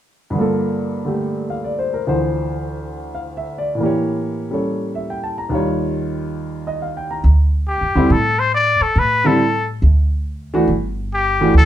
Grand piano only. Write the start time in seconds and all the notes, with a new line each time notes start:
0.30 G2 D3
0.36 F3 A#3
0.41 A4
1.05 D3 A3 G4
1.50 F5
1.64 D5
1.79 C5
1.94 A#4
2.07 D2 D3 E3 F3 C5
3.15 F5
3.37 E5
3.58 D5
3.75 A2 E3
3.80 A#3 G4
3.86 C#5
4.51 G3 C#4 A4 C#5
4.95 E5
5.10 G5
5.23 A5
5.38 A#5
5.49 D#2 D#3 G3 F4
5.55 C#5
6.67 D#5
6.82 F5
6.97 G5
7.11 A#5
7.95 D3 G3 C4 E4
9.24 D3 G3 C4 E4
10.54 E3 A3 D4 F#4
11.41 E3 A3 D4 F#4